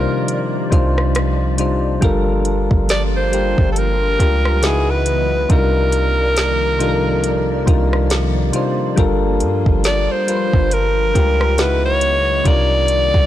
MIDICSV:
0, 0, Header, 1, 6, 480
1, 0, Start_track
1, 0, Tempo, 869565
1, 1117, Time_signature, 4, 2, 24, 8
1, 7322, End_track
2, 0, Start_track
2, 0, Title_t, "Alto saxophone"
2, 0, Program_c, 0, 65
2, 0, Note_on_c, 0, 70, 102
2, 641, Note_off_c, 0, 70, 0
2, 1605, Note_on_c, 0, 74, 108
2, 1666, Note_off_c, 0, 74, 0
2, 1748, Note_on_c, 0, 72, 107
2, 2029, Note_off_c, 0, 72, 0
2, 2054, Note_on_c, 0, 69, 71
2, 2087, Note_on_c, 0, 70, 107
2, 2095, Note_off_c, 0, 69, 0
2, 2567, Note_on_c, 0, 68, 97
2, 2575, Note_off_c, 0, 70, 0
2, 2705, Note_on_c, 0, 71, 108
2, 2714, Note_off_c, 0, 68, 0
2, 3041, Note_off_c, 0, 71, 0
2, 3044, Note_on_c, 0, 70, 103
2, 4458, Note_off_c, 0, 70, 0
2, 5444, Note_on_c, 0, 74, 111
2, 5584, Note_on_c, 0, 72, 107
2, 5592, Note_off_c, 0, 74, 0
2, 5924, Note_on_c, 0, 70, 100
2, 5933, Note_off_c, 0, 72, 0
2, 6404, Note_on_c, 0, 71, 99
2, 6412, Note_off_c, 0, 70, 0
2, 6539, Note_off_c, 0, 71, 0
2, 6542, Note_on_c, 0, 73, 113
2, 6885, Note_on_c, 0, 74, 117
2, 6893, Note_off_c, 0, 73, 0
2, 7322, Note_off_c, 0, 74, 0
2, 7322, End_track
3, 0, Start_track
3, 0, Title_t, "Synth keys"
3, 0, Program_c, 1, 88
3, 0, Control_c, 1, 64, 127
3, 0, Note_on_c, 1, 48, 87
3, 0, Note_on_c, 1, 55, 80
3, 0, Note_on_c, 1, 62, 80
3, 0, Note_on_c, 1, 63, 82
3, 0, Note_on_c, 1, 65, 79
3, 0, Note_on_c, 1, 70, 103
3, 0, Note_on_c, 1, 72, 97
3, 339, Note_off_c, 1, 48, 0
3, 340, Note_off_c, 1, 55, 0
3, 342, Note_off_c, 1, 62, 0
3, 344, Note_off_c, 1, 63, 0
3, 346, Note_off_c, 1, 65, 0
3, 347, Note_off_c, 1, 72, 0
3, 387, Note_on_c, 1, 48, 86
3, 390, Note_on_c, 1, 55, 77
3, 394, Note_on_c, 1, 62, 80
3, 398, Note_on_c, 1, 63, 77
3, 402, Note_on_c, 1, 65, 85
3, 405, Note_on_c, 1, 72, 103
3, 818, Note_off_c, 1, 48, 0
3, 819, Note_off_c, 1, 55, 0
3, 821, Note_off_c, 1, 62, 0
3, 823, Note_off_c, 1, 63, 0
3, 825, Note_off_c, 1, 65, 0
3, 826, Note_off_c, 1, 72, 0
3, 869, Note_on_c, 1, 48, 79
3, 874, Note_on_c, 1, 55, 73
3, 876, Note_on_c, 1, 62, 72
3, 879, Note_on_c, 1, 63, 73
3, 883, Note_on_c, 1, 65, 72
3, 887, Note_on_c, 1, 72, 90
3, 1086, Note_off_c, 1, 48, 0
3, 1088, Note_off_c, 1, 55, 0
3, 1089, Note_off_c, 1, 62, 0
3, 1091, Note_off_c, 1, 63, 0
3, 1093, Note_off_c, 1, 65, 0
3, 1094, Note_off_c, 1, 72, 0
3, 1109, Note_on_c, 1, 55, 112
3, 1114, Note_on_c, 1, 62, 100
3, 1117, Note_on_c, 1, 65, 105
3, 1122, Note_on_c, 1, 69, 104
3, 1123, Control_c, 1, 64, 0
3, 1126, Note_off_c, 1, 70, 0
3, 1127, Note_on_c, 1, 70, 127
3, 1231, Control_c, 1, 64, 127
3, 1751, Note_off_c, 1, 55, 0
3, 1753, Note_off_c, 1, 62, 0
3, 1755, Note_off_c, 1, 65, 0
3, 1758, Note_off_c, 1, 69, 0
3, 1760, Note_off_c, 1, 70, 0
3, 1830, Note_on_c, 1, 55, 70
3, 1834, Note_on_c, 1, 62, 62
3, 1838, Note_on_c, 1, 65, 63
3, 1843, Note_on_c, 1, 67, 62
3, 1846, Note_on_c, 1, 70, 81
3, 2259, Note_off_c, 1, 55, 0
3, 2261, Note_off_c, 1, 62, 0
3, 2263, Note_off_c, 1, 65, 0
3, 2265, Note_off_c, 1, 67, 0
3, 2267, Note_off_c, 1, 70, 0
3, 2311, Note_on_c, 1, 55, 77
3, 2315, Note_on_c, 1, 62, 68
3, 2319, Note_on_c, 1, 65, 69
3, 2323, Note_on_c, 1, 67, 69
3, 2328, Note_on_c, 1, 70, 81
3, 2551, Note_on_c, 1, 49, 73
3, 2553, Note_off_c, 1, 55, 0
3, 2553, Note_on_c, 1, 56, 69
3, 2556, Note_off_c, 1, 62, 0
3, 2558, Note_off_c, 1, 65, 0
3, 2558, Note_on_c, 1, 63, 66
3, 2560, Note_off_c, 1, 67, 0
3, 2561, Note_on_c, 1, 64, 72
3, 2562, Note_off_c, 1, 70, 0
3, 2563, Control_c, 1, 64, 0
3, 2564, Note_on_c, 1, 66, 69
3, 2568, Note_on_c, 1, 71, 83
3, 2643, Control_c, 1, 64, 127
3, 2979, Note_off_c, 1, 49, 0
3, 2981, Note_off_c, 1, 56, 0
3, 2983, Note_off_c, 1, 63, 0
3, 2984, Note_off_c, 1, 64, 0
3, 2986, Note_off_c, 1, 66, 0
3, 2988, Note_off_c, 1, 71, 0
3, 3030, Note_on_c, 1, 48, 93
3, 3034, Note_on_c, 1, 55, 89
3, 3038, Note_on_c, 1, 62, 90
3, 3040, Note_on_c, 1, 63, 89
3, 3044, Control_c, 1, 64, 0
3, 3044, Note_on_c, 1, 65, 84
3, 3047, Note_on_c, 1, 70, 105
3, 3123, Control_c, 1, 64, 127
3, 3672, Note_off_c, 1, 48, 0
3, 3674, Note_off_c, 1, 55, 0
3, 3675, Note_off_c, 1, 62, 0
3, 3676, Note_off_c, 1, 63, 0
3, 3679, Note_off_c, 1, 65, 0
3, 3680, Note_off_c, 1, 70, 0
3, 3748, Note_on_c, 1, 48, 89
3, 3751, Note_on_c, 1, 55, 85
3, 3756, Note_on_c, 1, 62, 83
3, 3757, Note_on_c, 1, 63, 87
3, 3761, Note_on_c, 1, 65, 81
3, 3766, Note_on_c, 1, 69, 78
3, 3802, Note_on_c, 1, 70, 99
3, 3803, Note_off_c, 1, 69, 0
3, 4178, Note_off_c, 1, 48, 0
3, 4180, Note_off_c, 1, 55, 0
3, 4182, Note_off_c, 1, 62, 0
3, 4183, Note_off_c, 1, 63, 0
3, 4184, Note_off_c, 1, 65, 0
3, 4205, Note_off_c, 1, 70, 0
3, 4227, Note_on_c, 1, 48, 89
3, 4231, Note_on_c, 1, 55, 80
3, 4234, Note_on_c, 1, 62, 82
3, 4238, Note_on_c, 1, 63, 85
3, 4242, Note_on_c, 1, 65, 86
3, 4244, Note_on_c, 1, 70, 98
3, 4657, Note_off_c, 1, 48, 0
3, 4659, Note_off_c, 1, 55, 0
3, 4661, Note_off_c, 1, 62, 0
3, 4663, Note_off_c, 1, 63, 0
3, 4665, Note_off_c, 1, 65, 0
3, 4666, Note_off_c, 1, 70, 0
3, 4707, Note_on_c, 1, 48, 82
3, 4710, Note_on_c, 1, 55, 76
3, 4714, Note_on_c, 1, 62, 75
3, 4717, Note_on_c, 1, 63, 74
3, 4720, Note_on_c, 1, 65, 72
3, 4724, Note_on_c, 1, 72, 93
3, 4924, Note_off_c, 1, 48, 0
3, 4926, Note_off_c, 1, 55, 0
3, 4928, Note_off_c, 1, 62, 0
3, 4930, Note_off_c, 1, 63, 0
3, 4931, Note_off_c, 1, 65, 0
3, 4933, Note_off_c, 1, 72, 0
3, 4947, Note_on_c, 1, 55, 115
3, 4951, Note_on_c, 1, 62, 110
3, 4955, Note_on_c, 1, 65, 102
3, 4959, Note_on_c, 1, 69, 105
3, 4964, Control_c, 1, 64, 0
3, 4964, Note_on_c, 1, 70, 123
3, 5055, Control_c, 1, 64, 127
3, 5590, Note_off_c, 1, 55, 0
3, 5592, Note_off_c, 1, 62, 0
3, 5594, Note_off_c, 1, 65, 0
3, 5596, Note_off_c, 1, 69, 0
3, 5599, Note_off_c, 1, 70, 0
3, 5668, Note_on_c, 1, 55, 71
3, 5673, Note_on_c, 1, 62, 66
3, 5678, Note_on_c, 1, 65, 68
3, 5683, Note_on_c, 1, 70, 62
3, 5687, Note_on_c, 1, 71, 62
3, 5722, Note_on_c, 1, 72, 81
3, 5723, Note_off_c, 1, 71, 0
3, 6098, Note_off_c, 1, 55, 0
3, 6100, Note_off_c, 1, 62, 0
3, 6103, Note_off_c, 1, 65, 0
3, 6105, Note_off_c, 1, 70, 0
3, 6125, Note_off_c, 1, 72, 0
3, 6148, Note_on_c, 1, 55, 76
3, 6151, Note_on_c, 1, 62, 67
3, 6156, Note_on_c, 1, 65, 69
3, 6162, Note_on_c, 1, 67, 73
3, 6165, Note_on_c, 1, 70, 86
3, 6391, Note_on_c, 1, 49, 75
3, 6392, Note_off_c, 1, 55, 0
3, 6394, Note_off_c, 1, 62, 0
3, 6394, Note_on_c, 1, 56, 70
3, 6396, Note_off_c, 1, 65, 0
3, 6397, Note_on_c, 1, 63, 72
3, 6399, Note_off_c, 1, 67, 0
3, 6401, Note_off_c, 1, 70, 0
3, 6402, Note_on_c, 1, 64, 70
3, 6404, Control_c, 1, 64, 0
3, 6405, Note_on_c, 1, 66, 72
3, 6409, Note_on_c, 1, 71, 84
3, 6499, Control_c, 1, 64, 127
3, 6819, Note_off_c, 1, 49, 0
3, 6821, Note_off_c, 1, 56, 0
3, 6823, Note_off_c, 1, 63, 0
3, 6825, Note_off_c, 1, 64, 0
3, 6826, Note_off_c, 1, 66, 0
3, 6828, Note_off_c, 1, 71, 0
3, 6868, Note_on_c, 1, 48, 96
3, 6873, Note_on_c, 1, 55, 90
3, 6876, Note_on_c, 1, 62, 93
3, 6879, Note_on_c, 1, 63, 85
3, 6882, Note_on_c, 1, 65, 86
3, 6884, Control_c, 1, 64, 0
3, 6886, Note_on_c, 1, 70, 101
3, 6986, Control_c, 1, 64, 127
3, 7322, Note_off_c, 1, 48, 0
3, 7322, Note_off_c, 1, 55, 0
3, 7322, Note_off_c, 1, 62, 0
3, 7322, Note_off_c, 1, 63, 0
3, 7322, Note_off_c, 1, 65, 0
3, 7322, Note_off_c, 1, 70, 0
3, 7322, End_track
4, 0, Start_track
4, 0, Title_t, "Analog synth pad"
4, 0, Program_c, 2, 89
4, 0, Note_on_c, 2, 48, 72
4, 0, Note_on_c, 2, 51, 66
4, 0, Note_on_c, 2, 53, 68
4, 0, Note_on_c, 2, 58, 66
4, 0, Note_on_c, 2, 74, 85
4, 1097, Note_off_c, 2, 48, 0
4, 1097, Note_off_c, 2, 51, 0
4, 1097, Note_off_c, 2, 58, 0
4, 1097, Note_off_c, 2, 74, 0
4, 1114, Note_on_c, 2, 55, 70
4, 1114, Note_on_c, 2, 58, 67
4, 1115, Note_on_c, 2, 62, 75
4, 1115, Note_on_c, 2, 65, 83
4, 2534, Note_off_c, 2, 53, 0
4, 2541, Note_off_c, 2, 55, 0
4, 2541, Note_off_c, 2, 58, 0
4, 2541, Note_off_c, 2, 62, 0
4, 2541, Note_off_c, 2, 65, 0
4, 2555, Note_on_c, 2, 49, 73
4, 2556, Note_on_c, 2, 52, 66
4, 2556, Note_on_c, 2, 59, 68
4, 2556, Note_on_c, 2, 75, 86
4, 2557, Note_on_c, 2, 54, 69
4, 3031, Note_off_c, 2, 49, 0
4, 3031, Note_off_c, 2, 52, 0
4, 3031, Note_off_c, 2, 59, 0
4, 3031, Note_off_c, 2, 75, 0
4, 3032, Note_off_c, 2, 54, 0
4, 3034, Note_on_c, 2, 74, 82
4, 3035, Note_on_c, 2, 53, 69
4, 3035, Note_on_c, 2, 58, 70
4, 3036, Note_on_c, 2, 48, 77
4, 3036, Note_on_c, 2, 51, 72
4, 4936, Note_off_c, 2, 74, 0
4, 4937, Note_off_c, 2, 48, 0
4, 4937, Note_off_c, 2, 51, 0
4, 4953, Note_on_c, 2, 55, 67
4, 4953, Note_on_c, 2, 65, 85
4, 4954, Note_on_c, 2, 62, 79
4, 6373, Note_off_c, 2, 58, 0
4, 6374, Note_off_c, 2, 53, 0
4, 6380, Note_off_c, 2, 55, 0
4, 6380, Note_off_c, 2, 65, 0
4, 6381, Note_off_c, 2, 62, 0
4, 6393, Note_on_c, 2, 54, 68
4, 6393, Note_on_c, 2, 59, 68
4, 6393, Note_on_c, 2, 75, 79
4, 6394, Note_on_c, 2, 49, 73
4, 6395, Note_on_c, 2, 52, 66
4, 6870, Note_off_c, 2, 54, 0
4, 6870, Note_off_c, 2, 59, 0
4, 6870, Note_off_c, 2, 75, 0
4, 6871, Note_off_c, 2, 49, 0
4, 6871, Note_off_c, 2, 52, 0
4, 6875, Note_on_c, 2, 48, 73
4, 6875, Note_on_c, 2, 51, 70
4, 6875, Note_on_c, 2, 58, 66
4, 6876, Note_on_c, 2, 53, 71
4, 6876, Note_on_c, 2, 60, 83
4, 7322, Note_off_c, 2, 48, 0
4, 7322, Note_off_c, 2, 51, 0
4, 7322, Note_off_c, 2, 53, 0
4, 7322, Note_off_c, 2, 58, 0
4, 7322, Note_off_c, 2, 60, 0
4, 7322, End_track
5, 0, Start_track
5, 0, Title_t, "808-style bass"
5, 0, Program_c, 3, 38
5, 399, Note_on_c, 3, 36, 104
5, 1096, Note_off_c, 3, 36, 0
5, 1118, Note_on_c, 3, 31, 112
5, 1481, Note_off_c, 3, 31, 0
5, 1497, Note_on_c, 3, 31, 104
5, 1957, Note_off_c, 3, 31, 0
5, 1978, Note_on_c, 3, 31, 95
5, 2304, Note_off_c, 3, 31, 0
5, 2319, Note_on_c, 3, 37, 110
5, 3015, Note_off_c, 3, 37, 0
5, 3037, Note_on_c, 3, 36, 111
5, 4215, Note_off_c, 3, 36, 0
5, 4237, Note_on_c, 3, 36, 107
5, 4698, Note_off_c, 3, 36, 0
5, 4957, Note_on_c, 3, 31, 102
5, 5200, Note_on_c, 3, 43, 96
5, 5208, Note_off_c, 3, 31, 0
5, 5330, Note_off_c, 3, 43, 0
5, 5335, Note_on_c, 3, 31, 103
5, 5566, Note_off_c, 3, 31, 0
5, 5817, Note_on_c, 3, 31, 100
5, 6143, Note_off_c, 3, 31, 0
5, 6158, Note_on_c, 3, 37, 110
5, 6855, Note_off_c, 3, 37, 0
5, 6877, Note_on_c, 3, 36, 109
5, 7241, Note_off_c, 3, 36, 0
5, 7256, Note_on_c, 3, 36, 104
5, 7322, Note_off_c, 3, 36, 0
5, 7322, End_track
6, 0, Start_track
6, 0, Title_t, "Drums"
6, 156, Note_on_c, 9, 42, 73
6, 211, Note_off_c, 9, 42, 0
6, 397, Note_on_c, 9, 36, 88
6, 400, Note_on_c, 9, 42, 68
6, 452, Note_off_c, 9, 36, 0
6, 455, Note_off_c, 9, 42, 0
6, 540, Note_on_c, 9, 37, 88
6, 595, Note_off_c, 9, 37, 0
6, 635, Note_on_c, 9, 42, 70
6, 640, Note_on_c, 9, 37, 112
6, 690, Note_off_c, 9, 42, 0
6, 695, Note_off_c, 9, 37, 0
6, 873, Note_on_c, 9, 42, 80
6, 929, Note_off_c, 9, 42, 0
6, 1116, Note_on_c, 9, 42, 65
6, 1117, Note_on_c, 9, 36, 118
6, 1171, Note_off_c, 9, 42, 0
6, 1172, Note_off_c, 9, 36, 0
6, 1352, Note_on_c, 9, 42, 61
6, 1407, Note_off_c, 9, 42, 0
6, 1495, Note_on_c, 9, 36, 97
6, 1550, Note_off_c, 9, 36, 0
6, 1595, Note_on_c, 9, 42, 77
6, 1601, Note_on_c, 9, 38, 107
6, 1650, Note_off_c, 9, 42, 0
6, 1656, Note_off_c, 9, 38, 0
6, 1838, Note_on_c, 9, 42, 67
6, 1893, Note_off_c, 9, 42, 0
6, 1976, Note_on_c, 9, 36, 98
6, 2031, Note_off_c, 9, 36, 0
6, 2076, Note_on_c, 9, 42, 73
6, 2131, Note_off_c, 9, 42, 0
6, 2317, Note_on_c, 9, 36, 84
6, 2319, Note_on_c, 9, 42, 70
6, 2372, Note_off_c, 9, 36, 0
6, 2374, Note_off_c, 9, 42, 0
6, 2459, Note_on_c, 9, 37, 95
6, 2514, Note_off_c, 9, 37, 0
6, 2554, Note_on_c, 9, 42, 72
6, 2559, Note_on_c, 9, 38, 117
6, 2609, Note_off_c, 9, 42, 0
6, 2615, Note_off_c, 9, 38, 0
6, 2792, Note_on_c, 9, 42, 75
6, 2847, Note_off_c, 9, 42, 0
6, 3035, Note_on_c, 9, 36, 111
6, 3035, Note_on_c, 9, 42, 68
6, 3090, Note_off_c, 9, 42, 0
6, 3091, Note_off_c, 9, 36, 0
6, 3270, Note_on_c, 9, 42, 60
6, 3325, Note_off_c, 9, 42, 0
6, 3514, Note_on_c, 9, 42, 79
6, 3520, Note_on_c, 9, 38, 102
6, 3569, Note_off_c, 9, 42, 0
6, 3575, Note_off_c, 9, 38, 0
6, 3756, Note_on_c, 9, 42, 66
6, 3811, Note_off_c, 9, 42, 0
6, 3994, Note_on_c, 9, 42, 72
6, 4050, Note_off_c, 9, 42, 0
6, 4236, Note_on_c, 9, 36, 89
6, 4238, Note_on_c, 9, 42, 68
6, 4291, Note_off_c, 9, 36, 0
6, 4293, Note_off_c, 9, 42, 0
6, 4378, Note_on_c, 9, 37, 86
6, 4433, Note_off_c, 9, 37, 0
6, 4472, Note_on_c, 9, 42, 72
6, 4478, Note_on_c, 9, 38, 116
6, 4528, Note_off_c, 9, 42, 0
6, 4533, Note_off_c, 9, 38, 0
6, 4711, Note_on_c, 9, 42, 81
6, 4766, Note_off_c, 9, 42, 0
6, 4954, Note_on_c, 9, 42, 72
6, 4955, Note_on_c, 9, 36, 119
6, 5010, Note_off_c, 9, 36, 0
6, 5010, Note_off_c, 9, 42, 0
6, 5191, Note_on_c, 9, 42, 63
6, 5246, Note_off_c, 9, 42, 0
6, 5333, Note_on_c, 9, 36, 98
6, 5389, Note_off_c, 9, 36, 0
6, 5432, Note_on_c, 9, 42, 78
6, 5438, Note_on_c, 9, 38, 106
6, 5487, Note_off_c, 9, 42, 0
6, 5493, Note_off_c, 9, 38, 0
6, 5675, Note_on_c, 9, 42, 68
6, 5731, Note_off_c, 9, 42, 0
6, 5815, Note_on_c, 9, 36, 98
6, 5870, Note_off_c, 9, 36, 0
6, 5914, Note_on_c, 9, 42, 75
6, 5969, Note_off_c, 9, 42, 0
6, 6156, Note_on_c, 9, 36, 89
6, 6157, Note_on_c, 9, 42, 72
6, 6211, Note_off_c, 9, 36, 0
6, 6213, Note_off_c, 9, 42, 0
6, 6297, Note_on_c, 9, 37, 95
6, 6352, Note_off_c, 9, 37, 0
6, 6392, Note_on_c, 9, 42, 70
6, 6398, Note_on_c, 9, 38, 118
6, 6447, Note_off_c, 9, 42, 0
6, 6453, Note_off_c, 9, 38, 0
6, 6631, Note_on_c, 9, 42, 78
6, 6686, Note_off_c, 9, 42, 0
6, 6875, Note_on_c, 9, 42, 66
6, 6876, Note_on_c, 9, 36, 119
6, 6930, Note_off_c, 9, 42, 0
6, 6931, Note_off_c, 9, 36, 0
6, 7111, Note_on_c, 9, 42, 60
6, 7166, Note_off_c, 9, 42, 0
6, 7255, Note_on_c, 9, 36, 106
6, 7310, Note_off_c, 9, 36, 0
6, 7322, End_track
0, 0, End_of_file